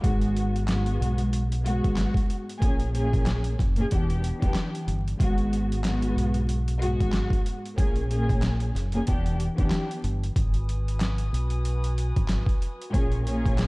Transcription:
0.01 G#1 G#2 G#3 B3 F#4, kick, closed hi-hat
0.21 closed hi-hat
0.37 closed hi-hat
0.56 closed hi-hat
0.67 G#2 G#3 B3 F#4, snare, clap, closed hi-hat
0.86 closed hi-hat
1.00 B1, closed hi-hat
1.18 closed hi-hat
1.33 closed hi-hat
1.52 closed hi-hat
1.63 G#2 G#3 B3 F#4, closed hi-hat
1.84 G#1, kick, closed hi-hat
1.97 snare, clap, closed hi-hat
2.14 kick, closed hi-hat
2.30 closed hi-hat
2.49 closed hi-hat
2.59 A#1 A#2 A#3 C#4 G#4, kick, closed hi-hat
2.80 closed hi-hat
2.92 A#2 A#3 C#4 G#4, closed hi-hat
3.13 kick, closed hi-hat
3.26 snare, clap, closed hi-hat
3.44 closed hi-hat
3.59 F#1, kick, snare, closed hi-hat
3.76 A#2 A#3 C#4, closed hi-hat
3.80 G#4
3.90 E1 E3 B3 D4 G4, kick, closed hi-hat
4.10 closed hi-hat
4.24 closed hi-hat
4.39 E1 E3 B3 D4 G4, kick, closed hi-hat
4.54 snare, clap, closed hi-hat
4.75 closed hi-hat
4.87 G1, closed hi-hat
5.08 closed hi-hat
5.17 G#1 G#2 G#3 B3 F#4, kick, closed hi-hat
5.38 closed hi-hat
5.53 closed hi-hat
5.72 closed hi-hat
5.83 G#2 G#3 B3 F#4, snare, clap, closed hi-hat
6.02 closed hi-hat
6.16 B1, closed hi-hat
6.34 closed hi-hat
6.49 closed hi-hat
6.68 closed hi-hat
6.79 G#2 G#3 B3 F#4, closed hi-hat
7.00 G#1, kick, closed hi-hat
7.12 snare, clap, closed hi-hat
7.30 kick, closed hi-hat
7.46 closed hi-hat
7.66 closed hi-hat
7.75 A#1 A#2 A#3 C#4 G#4, kick, closed hi-hat
7.96 closed hi-hat
8.08 A#2 A#3 C#4 G#4, closed hi-hat
8.29 kick, closed hi-hat
8.42 snare, clap, closed hi-hat
8.60 closed hi-hat
8.75 F#1, snare, closed hi-hat
8.92 A#2 A#3 C#4, closed hi-hat
8.96 G#4
9.06 E1 E3 B3 D4 G4, kick, closed hi-hat
9.26 closed hi-hat
9.40 closed hi-hat
9.55 E1 E3 B3 D4 G4, kick, closed hi-hat
9.70 snare, clap, closed hi-hat
9.91 closed hi-hat
10.04 G1, closed hi-hat
10.23 closed hi-hat
10.36 G#1 F#4 B4 G#5 D#6, kick, closed hi-hat
10.54 closed hi-hat
10.69 closed hi-hat
10.88 closed hi-hat
11.00 snare, clap, closed hi-hat
11.18 closed hi-hat
11.33 B1, closed hi-hat
11.50 closed hi-hat
11.65 closed hi-hat
11.84 closed hi-hat
11.98 closed hi-hat
12.16 G#1, kick, closed hi-hat
12.28 snare, clap, closed hi-hat
12.46 kick, closed hi-hat
12.62 closed hi-hat
12.81 closed hi-hat
12.92 A#1 A#2 A#3 C#4 F4 G#4 A#4 G#5 C#6, kick, closed hi-hat
13.12 closed hi-hat
13.24 A#2 A#3 C#4 G#4, closed hi-hat
13.46 kick, closed hi-hat
13.58 snare, clap, closed hi-hat

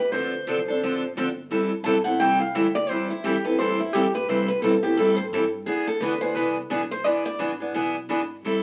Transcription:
Already playing: E2 B4
0.11 D2 D3 F3 C4 D4 A4 C5
0.47 B1 D3 F3 C4 D4 A4
0.68 C4 D4 A4
0.82 A1 D3 F3 C4 D4 A4
1.16 G1 D3 F3 C4 D4 A4
1.49 A1 E3 G3 C4 E4 A4
1.83 B1 E3 G3 C4 E4 A4 A5
2.04 C4 E4 A4 F#5
2.19 C2 E3 G3 C4 E4 A4 G5
2.40 F5
2.53 D2 E3 G3 C4 E4 A4 E5
2.75 D5
2.88 E2 E3 G3 C4 E4 A4 C5
3.09 E4, muted upright bass stroke
3.22 F2 E3 G3 C4 E4 G4 A4
3.45 C4 E4 A4 B4
3.58 G2 E3 G3 C4 E4 A4 C5
3.80 E4
3.92 A2 E3 G3 C4 E4 G4 A4
4.15 B4
4.26 C3 E3 G3 C4 E4 A4 C5
4.48 B4
4.60 B2 E3 G3 C4 E4 A4
4.83 C4 E4 G4 A4
4.95 A2 E3 G3 C4 E4 A4
4.99 A4
5.16 C5
5.30 G2 E3 G3 C4 E4 A4
5.64 E2 E3 B3 D4 G#4
5.87 A4
6.00 D2 E3 B3 D4 G#4 B4
6.21 B3 D4 G#4 C5
6.34 C2 E3 B3 D4 G#4 B4
6.70 B1 E3 B3 D4 G#4
6.91 C5
7.04 G#1 E3 B3 D4 G#4 D5
7.26 D5
7.39 A1 E3 B3 D4 G#4
7.60 B3 D4 G#4
7.74 B1 E3 B3 D4 G#4
8.09 G#1 E3 B3 D4 G#4
8.43 A1 E3 G3 C4 E4 A4

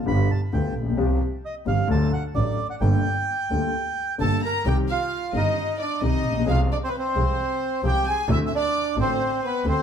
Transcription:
0.05 G1 G2 D3 G3 B3 F4 B5
0.31 A5
0.52 D2 D3 G3 B3 F4 G5
0.75 A#1
0.81 A1
0.85 A#1
0.91 B1
0.97 C2 C3 F3 G3 C4 G4
1.45 D#5
1.65 G1 G2 F3 G3 C4 G4 F5
1.87 D2 D3 F#3 A3 D4 A4 A5
2.13 F#5
2.35 A1 A2 F#3 A3 D4 A4 D5
2.70 F#5
2.81 G1 G2 G3 A#3 D4 A4 G5
3.50 D2 D3 G3 A#3 D4 A4
4.18 G1 G2 G3 A#3 D4 A4 A5
4.43 A#4 A#5
4.65 C2 C3 D#3 G3 C4 G4 G5
4.88 F4 F5
5.33 G1 G2 D#3 G3 C4 D#4 G4 D#5
5.37 D#5
5.80 D4 D5
6.01 C2 C3 D#3 G3 C4 D#4 G4 D#5
6.25 A#1
6.30 A1 A#1
6.41 B1
6.46 C2 C3 F3 G#3 C4 F4 G#4 F5
6.51 F5
6.72 D4 D5
6.84 C4 C5
6.89 B4
6.98 C4 C5
7.16 C2 C3 F3 G#3 C4 G#4
7.83 C2 C3 F3 G#3 C4 G4 G#4 G5
7.87 G5
8.08 G#4 G#5
8.28 D2 D3 A3 C4 E4 F#4 E5
8.46 E5
8.55 D4 D5
8.96 A1 A2 D3 A3 C4 F#4
9.00 C5
9.45 B3 B4
9.64 D2 D3 A3 C4 F#4 C5
9.70 C5

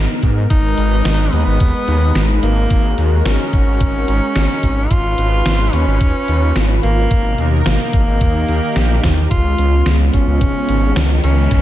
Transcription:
Already playing: B3 D#4 A#4
0.23 G#2, kick, closed hi-hat
0.50 G#1 G#3 D#4 B4, kick, closed hi-hat
0.78 G#1, closed hi-hat
1.05 G#1, snare, closed hi-hat
1.33 D#2 B3, closed hi-hat
1.46 G#1
1.60 D#2, kick, closed hi-hat
1.88 D#2, closed hi-hat
2.15 G#1, snare, closed hi-hat
2.43 G#1 A#3, closed hi-hat
2.70 G#1 F#4 A#4, kick, closed hi-hat
2.98 D#2, closed hi-hat
3.25 G#1 C#4, snare, closed hi-hat
3.53 G#1, kick, closed hi-hat
3.67 G#1
3.81 G#1, kick, closed hi-hat
4.08 G#1, closed hi-hat
4.36 G#1, snare, closed hi-hat
4.63 G#1, kick, closed hi-hat
4.91 G#1 C#4 F4 B4, kick, closed hi-hat
5.18 G#1, closed hi-hat
5.46 G#1, snare, closed hi-hat
5.73 D#2 C#4, closed hi-hat
5.87 G#1
6.01 D#2, kick, closed hi-hat
6.28 D#2, closed hi-hat
6.56 G#1, snare, closed hi-hat
6.83 G#1 A#3, closed hi-hat
7.11 G#1 B2 D#4 A#4, kick, closed hi-hat
7.38 D#2, closed hi-hat
7.66 G#1 A#3, snare, closed hi-hat
7.93 G#1, kick, closed hi-hat
8.07 G#1
8.21 D#2 D#3 G4 A#4, kick, closed hi-hat
8.48 D#2, closed hi-hat
8.76 A#1, snare, closed hi-hat
9.03 D#2, kick, snare, closed hi-hat
9.31 C#2 C#3 G#3 B3 F4, kick, closed hi-hat, riser
9.58 C#2, closed hi-hat
9.86 C#2, snare, closed hi-hat
10.14 G#1 C#4, kick, closed hi-hat
10.27 C#2
10.41 G#1, kick, closed hi-hat
10.69 G#1, closed hi-hat
10.96 C#2, snare, closed hi-hat
11.24 C#2 C#4, closed hi-hat
11.51 D#2 D#3 A#3 C#4 F#4, kick, closed hi-hat

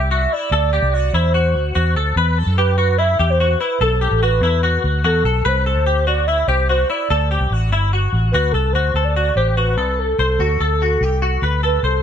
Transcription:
Already playing: C2 G4
0.11 F#4 E5
0.32 E4 D5
0.51 D2 A4
0.73 G4
0.82 C2
0.93 F#4 D5
1.13 E2 E4 C5
1.34 F#4
1.55 D2
1.75 E2 F#4
1.95 D2 A4
2.16 E2 B4
2.38 A4
2.46 F#2
2.57 G4 B4
2.77 F#4 B4
2.98 E4 E5
3.19 E2 G4
3.30 C5
3.40 F#4
3.60 E4 B4
3.81 B1 A4
4.01 G4
4.11 A1
4.23 F#4 B4
4.41 E2 E4
4.63 F#4
4.84 D2
5.04 E2 F#4 A4
5.24 B1 A4
5.45 C2 B4 C5
5.66 A4
5.76 D2
5.86 G4
6.07 F#4 D5
6.27 E4 E5
6.48 C2 G4 C5
6.69 F#4 C5
6.90 E4 D5
7.10 D2 A4
7.31 G4
7.40 C2
7.50 A1 F#4
7.70 G1 E4
7.93 F#4
8.13 A1
8.32 D2 F#4 B4
8.52 C2 A4
8.72 D2 F#4 C5
8.94 D2 A4
9.04 D5
9.16 F#4
9.36 A1 G4 C5
9.50 C5
9.57 F#4 B4
9.77 C2 A4
9.99 A4
10.19 C2 A4 C5
10.39 D2 F#4
10.60 D2 A4
10.82 F#4
11.01 C2 G4
11.22 F#4
11.42 D2 B4
11.63 A4 B4
11.83 C2 A4 C5

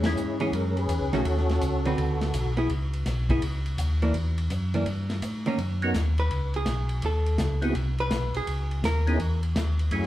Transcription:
Already playing: E2
0.04 G#3 C#4 E4, snare, ride
0.16 G#2, hi-hat pedal
0.40 E3 B3 C#4 G#4, ride
0.52 F#2 C#4 A#4, ride
0.68 A#4
0.77 G#4 B4, ride
0.88 E2, hi-hat pedal, ride
1.00 C#2
1.13 B1 D#3 A3 C#4 F#4 A4, snare, ride
1.24 D#2, ride
1.37 snare
1.49 snare, ride
1.61 C#2, hi-hat pedal, ride
1.85 D3 C4 F#4 B4, ride
1.97 D2, ride
2.21 snare, ride
2.33 B1, hi-hat pedal, ride
2.57 B3 E4 G#4, ride
2.69 C#2, ride
2.93 ride
3.06 B1, snare, hi-hat pedal, ride
3.29 B3 E4 G#4, kick, ride
3.42 C#2, ride
3.66 ride
3.77 D#2, hi-hat pedal, ride
4.02 E3 A#3 D4, ride
4.14 E2, ride
4.38 ride
4.50 F#2, hi-hat pedal, ride
4.74 E3 A#3 D4, ride
4.86 G2, ride
5.10 snare, ride
5.22 A2, hi-hat pedal, ride
5.46 D#3 A#3 C#4, ride
5.58 F#2, ride
5.82 B3 C#4 D#4 F#4 A#4, ride
5.94 D#2, snare, hi-hat pedal, ride
6.18 B4, ride
6.31 C#2, ride
6.54 G#4, ride
6.66 B1, snare, hi-hat pedal, ride
6.89 ride
7.02 D#2 A4, ride
7.26 ride
7.38 C#2, snare, hi-hat pedal, ride
7.62 B3 C4 E4 F#4 G#4, ride
7.75 C2, ride
7.98 B4, ride
8.11 B1, snare, hi-hat pedal, ride
8.34 B1 G#4, ride
8.47 C#2, ride
8.71 ride
8.83 D#2 A#4, snare, hi-hat pedal, ride
9.07 B3 C#4 D#4 E4 G#4, ride
9.20 E2, ride
9.43 ride
9.55 D#2, snare, hi-hat pedal, ride
9.79 ride
9.91 F#2 A3 C#4 E4 F#4 G#4, ride
10.03 snare

